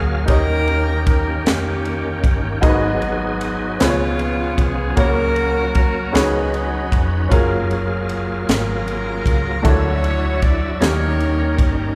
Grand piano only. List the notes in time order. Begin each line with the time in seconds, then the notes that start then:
Already playing: F#4 G#4 A#4 C#5 F5
0.26 D#3 D#4 G4 A#4 C#5
0.30 D#5
2.61 G#2 D#4 F#4 G#4 A#4 D#5
2.69 B4
3.79 B2 C#4 F4 G#4 B4 C5
3.88 C#5
4.96 C#3 A#3 C#4 F#4 A#4 C#5
6.12 C#3 C#4 D#4 F#4 G#4 B4
7.28 F#3 C#4 F4 G#4
7.33 A#4
9.62 D3 A3 D4 E4 F#4 A4
10.80 D#3 A#3 C#4 D#4 G4 A#4